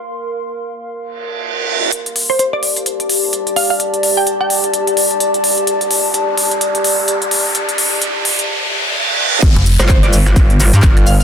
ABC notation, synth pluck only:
X:1
M:4/4
L:1/16
Q:"Swing 16ths" 1/4=128
K:Gm
V:1 name="Synth pluck"
z16 | z3 c c d z8 f f | z3 g z g3 z8 | z16 |
z16 | z3 c c d z8 f f |]